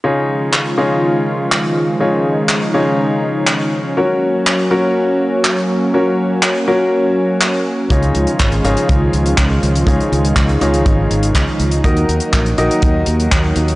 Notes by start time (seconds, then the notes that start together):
0.04 C#3 D#3 F3 G#3 C#4 D#4 F4 G#4 C#5
0.53 clap
0.78 C#3 D#4 F4 G#4 C#5
1.52 clap
2.00 C#3 D#4 F4 G#4 C#5
2.49 clap
2.74 C#3 D#4 F4 G#4 C#5
3.47 clap
3.97 F#3 A#3 C#4 F#4 A#4 C#5
4.47 clap
4.71 F#3 C#4 F#4 A#4 C#5
5.45 clap
5.94 F#3 C#4 F#4 A#4 C#5
6.43 clap
6.68 F#3 C#4 F#4 A#4 C#5
7.41 clap
7.90 C#2 C#3 D#3 F3 G#3 D#4 F4 G#4 C#5, kick, closed hi-hat
8.03 closed hi-hat
8.15 C#2, closed hi-hat
8.27 closed hi-hat
8.39 G#1, kick, clap, closed hi-hat
8.52 closed hi-hat
8.64 G#1 C#3 D#4 F4 G#4 C#5, closed hi-hat
8.77 closed hi-hat
8.89 C#2, kick, closed hi-hat
9.13 C#2, closed hi-hat
9.26 closed hi-hat
9.38 C#2, kick, clap, closed hi-hat
9.63 C#2, closed hi-hat
9.75 closed hi-hat
9.87 C#2 C#3 D#4 F4 G#4 C#5, kick, closed hi-hat
10.00 closed hi-hat
10.12 C#2, closed hi-hat
10.25 closed hi-hat
10.36 C#2, kick, clap, closed hi-hat
10.49 closed hi-hat
10.61 C#2 C#3 D#4 F4 G#4 C#5, closed hi-hat
10.74 closed hi-hat
10.86 G#1, kick, closed hi-hat
11.11 G#1, closed hi-hat
11.23 closed hi-hat
11.35 C#2, kick, clap, closed hi-hat
11.60 C#2, closed hi-hat
11.71 closed hi-hat
11.84 D#2 D#3 F#3 A#3 D#4 F#4 A#4 D#5, kick, closed hi-hat
11.97 closed hi-hat
12.09 D#2, closed hi-hat
12.20 closed hi-hat
12.33 A#1, kick, clap, closed hi-hat
12.46 closed hi-hat
12.58 A#1 D#3 D#4 F#4 A#4 D#5, closed hi-hat
12.71 closed hi-hat
12.82 D#2, kick, closed hi-hat
13.06 D#2, closed hi-hat
13.20 closed hi-hat
13.31 D#2, kick, clap, closed hi-hat
13.56 D#2, closed hi-hat
13.68 closed hi-hat